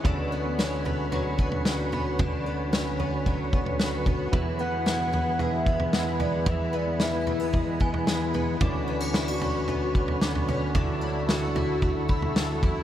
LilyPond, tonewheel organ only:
<<
  \new Staff \with { instrumentName = "Tonewheel organ" } { \time 4/4 \key e \mixolydian \tempo 4 = 112 << { b'1~ | b'1 | b'1~ | b'1~ |
b'1 | a'1 | } \\ { cis'1~ | cis'1 | b1~ | b1 |
cis'1 | e'1 | } >> }
  \new Staff \with { instrumentName = "Tonewheel organ" } { \clef bass \time 4/4 \key e \mixolydian <d, d fis'>1~ | <d, d fis'>1 | <e, e gis'>1~ | <e, e gis'>1 |
<d, d fis'>1~ | <d, d fis'>1 | }
>>